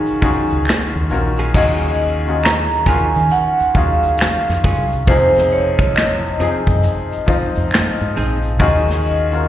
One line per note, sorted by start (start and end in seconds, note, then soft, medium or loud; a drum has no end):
0.00 0.13 D#3 medium
0.00 0.14 C#4 medium
0.00 0.63 D#4 medium
0.00 0.14 F4 medium
0.00 0.14 F#4 medium
0.00 0.15 G#4 medium
0.05 closed hi-hat soft
0.05 shaker soft
0.21 0.98 D#3 medium
0.21 0.98 C#4 medium
0.21 0.99 F4 medium
0.21 0.99 F#4 medium
0.21 1.00 G#4 medium
0.21 muted fingered electric bass stroke soft
0.21 kick medium
0.21 closed hi-hat medium
0.21 shaker medium
0.49 0.65 C#2 medium
0.49 closed hi-hat soft
0.49 shaker soft
0.65 finger snap medium
0.65 closed hi-hat medium
0.65 shaker medium
0.69 finger snap medium
0.69 snare loud
0.94 1.09 D#2 medium
0.94 closed hi-hat soft
0.94 shaker soft
1.09 1.49 A#1 medium
1.09 1.48 D#3 medium
1.09 1.49 C#4 medium
1.09 1.49 F4 medium
1.09 1.50 F#4 medium
1.09 1.50 A#4 medium
1.09 closed hi-hat medium
1.09 shaker soft
1.37 1.51 F#3 soft
1.37 1.51 C#4 soft
1.37 1.51 F4 medium
1.37 1.51 G#4 medium
1.37 closed hi-hat soft
1.37 shaker soft
1.54 2.67 D#2 loud
1.54 2.11 D#3 medium
1.54 2.12 C#4 medium
1.54 2.12 F4 medium
1.54 2.13 F#4 medium
1.54 2.13 G#4 loud
1.54 2.46 D#5 medium
1.54 kick loud
1.54 crash medium
1.54 shaker medium
1.82 closed hi-hat soft
1.82 shaker soft
1.98 closed hi-hat soft
1.98 shaker soft
2.26 2.78 D#3 medium
2.26 2.78 C#4 medium
2.26 2.79 F4 medium
2.26 2.79 F#4 medium
2.26 2.80 G#4 medium
2.26 closed hi-hat soft
2.26 shaker soft
2.43 2.85 A#5 medium
2.43 finger snap medium
2.43 closed hi-hat medium
2.43 shaker medium
2.45 finger snap medium
2.45 snare loud
2.68 closed hi-hat soft
2.68 shaker soft
2.86 3.11 D#2 medium
2.86 3.63 D#3 medium
2.86 3.08 F#3 medium
2.86 3.63 C#4 medium
2.86 3.08 C#4 medium
2.86 3.64 F4 medium
2.86 3.09 F4 medium
2.86 3.64 F#4 medium
2.86 3.09 G#4 medium
2.86 3.65 A#4 medium
2.86 3.32 G#5 medium
2.86 kick medium
2.86 closed hi-hat medium
3.15 3.29 D#3 medium
3.15 closed hi-hat soft
3.15 shaker soft
3.30 3.77 F#5 loud
3.30 closed hi-hat medium
3.30 shaker medium
3.59 muted fingered electric bass stroke soft
3.59 closed hi-hat soft
3.59 shaker soft
3.74 4.14 D#2 medium
3.74 4.88 D#3 medium
3.74 4.89 C#4 medium
3.74 4.89 F4 medium
3.74 4.90 F#4 medium
3.74 4.90 G#4 medium
3.74 5.12 F5 medium
3.74 kick medium
3.74 closed hi-hat medium
4.02 closed hi-hat soft
4.02 shaker soft
4.18 finger snap medium
4.18 closed hi-hat medium
4.18 shaker medium
4.21 finger snap medium
4.21 snare loud
4.47 4.62 F2 medium
4.47 snare soft
4.47 closed hi-hat soft
4.47 shaker soft
4.62 5.02 C2 medium
4.62 4.85 F#3 medium
4.62 4.85 C#4 medium
4.62 4.85 F4 medium
4.62 4.85 G#4 medium
4.62 kick medium
4.62 open hi-hat soft
4.62 shaker soft
4.89 closed hi-hat soft
4.89 shaker soft
5.07 6.36 F2 loud
5.07 6.22 C3 medium
5.07 6.21 F3 medium
5.07 6.22 D#4 medium
5.07 6.23 G#4 loud
5.07 5.53 C5 medium
5.07 kick loud
5.07 closed hi-hat medium
5.07 shaker medium
5.35 snare soft
5.35 closed hi-hat soft
5.35 shaker soft
5.50 5.93 C#5 medium
5.50 closed hi-hat soft
5.50 shaker soft
5.79 kick loud
5.79 closed hi-hat soft
5.79 shaker soft
5.95 8.12 D#5 medium
5.95 finger snap medium
5.95 closed hi-hat medium
5.95 shaker medium
5.98 finger snap medium
5.98 snare loud
6.22 closed hi-hat soft
6.22 shaker soft
6.39 7.16 F3 medium
6.39 6.61 F3 medium
6.39 7.16 C4 medium
6.39 6.61 C4 medium
6.39 6.61 D#4 medium
6.39 7.17 D#4 medium
6.39 6.61 G#4 medium
6.39 7.17 G#4 medium
6.39 muted fingered electric bass stroke soft
6.39 closed hi-hat medium
6.67 6.82 F#2 medium
6.67 kick medium
6.67 closed hi-hat soft
6.67 shaker medium
6.83 closed hi-hat medium
6.83 shaker medium
7.12 closed hi-hat soft
7.12 shaker soft
7.26 8.41 F3 medium
7.26 8.41 C4 medium
7.26 8.42 D#4 medium
7.26 8.42 F4 medium
7.26 muted fingered electric bass stroke soft
7.26 kick medium
7.26 closed hi-hat medium
7.55 7.71 F2 medium
7.55 closed hi-hat soft
7.55 shaker soft
7.71 finger snap medium
7.71 closed hi-hat medium
7.71 shaker medium
7.74 finger snap medium
7.74 snare loud
7.99 8.15 G#2 medium
7.99 closed hi-hat soft
7.99 shaker soft
8.15 8.61 A#1 medium
8.15 8.37 F3 medium
8.15 8.38 C4 medium
8.15 8.38 D#4 medium
8.15 8.38 G#4 medium
8.15 closed hi-hat medium
8.15 shaker medium
8.41 closed hi-hat soft
8.41 shaker soft
8.59 9.48 D#2 loud
8.59 9.17 D#3 medium
8.59 9.17 C#4 medium
8.59 9.17 F4 medium
8.59 9.18 F#4 medium
8.59 9.18 G#4 loud
8.59 9.48 D#5 medium
8.59 kick loud
8.59 closed hi-hat medium
8.59 shaker medium
8.88 snare soft
8.88 closed hi-hat soft
8.88 shaker soft
9.02 closed hi-hat soft
9.02 shaker soft
9.31 9.48 D#3 medium
9.31 9.48 C#4 medium
9.31 9.48 F4 medium
9.31 9.48 F#4 medium
9.31 9.48 A#4 medium
9.31 closed hi-hat medium
9.31 shaker soft